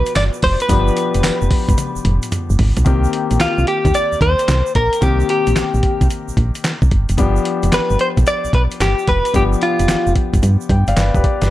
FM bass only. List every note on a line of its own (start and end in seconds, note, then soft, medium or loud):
0.16 0.30 G1 loud
0.43 0.57 F1 medium
0.70 0.91 G1 loud
1.15 1.22 F1 medium
1.42 1.49 F1 medium
1.69 1.76 G1 loud
1.96 2.00 F1 soft
2.05 2.19 F1 loud
2.50 2.57 G1 medium
2.59 2.73 G#1 loud
2.77 2.84 B1 medium
2.86 3.07 C2 loud
3.31 3.38 A#1 loud
3.58 3.65 C2 medium
3.85 3.92 D#2 loud
4.12 4.16 D#2 soft
4.21 4.35 D#2 medium
4.48 4.63 C2 loud
4.75 4.90 A#1 medium
5.02 5.24 C2 loud
5.47 5.54 A#1 medium
5.74 5.81 A#1 medium
6.01 6.08 C2 medium
6.28 6.32 A#1 soft
6.37 6.52 A#1 loud
6.82 6.89 C2 loud
6.92 7.06 G1 medium
7.10 7.17 F1 medium
7.18 7.40 G1 loud
7.63 7.71 F1 medium
7.91 7.98 G1 medium
8.17 8.25 B1 loud
8.45 8.48 B1 soft
8.53 8.68 B1 medium
8.80 8.95 G1 medium
9.08 9.22 F1 medium
9.35 9.56 G1 loud
9.80 9.87 F1 medium
9.89 9.96 F1 soft
10.07 10.14 F1 medium
10.34 10.41 G1 loud
10.43 10.57 G2 loud
10.70 10.84 G2 loud
10.88 10.95 G1 medium
10.97 11.11 G1 loud
11.15 11.22 F1 medium
11.42 11.49 G1 medium